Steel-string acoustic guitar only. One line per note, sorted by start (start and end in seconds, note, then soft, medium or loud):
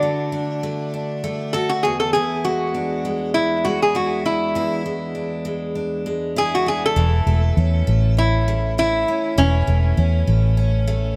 0.00 2.18 D3 medium
0.00 0.62 A3 soft
0.00 0.32 D4 soft
0.00 1.53 F#4 medium
0.32 0.93 D4 soft
0.63 1.22 A3 soft
0.94 2.18 D4 soft
1.24 1.90 A3 medium
1.54 1.91 F#4 medium
1.85 2.13 E2 medium
2.15 4.54 E2 medium
2.15 3.94 E4 medium
2.44 3.04 G#3 soft
2.74 3.34 D4 soft
3.05 3.64 G#3 soft
3.35 4.24 D4 soft
3.65 4.84 G#3 medium
3.95 4.56 E4 medium
4.25 5.14 D4 soft
4.55 6.96 E2 medium
4.55 6.36 E4 medium
4.86 5.44 G#3 soft
5.15 5.74 D4 soft
5.45 6.05 G#3 soft
5.75 6.65 D4 soft
6.06 7.03 G#3 medium
6.36 6.97 E4 medium
6.66 7.03 D4 soft
6.96 9.36 E3 medium
6.96 8.77 E4 medium
7.27 7.86 A3 soft
7.57 8.17 C#4 soft
7.87 8.47 A3 soft
8.17 9.08 C#4 soft
8.48 9.66 A3 medium
8.78 9.37 E4 medium
9.08 9.97 C#4 soft
9.38 11.16 E3 medium
9.38 11.16 E4 medium
9.67 10.26 A3 soft
9.97 10.57 C#4 medium
10.27 10.86 A3 medium
10.57 11.16 C#4 soft
10.88 11.16 A3 medium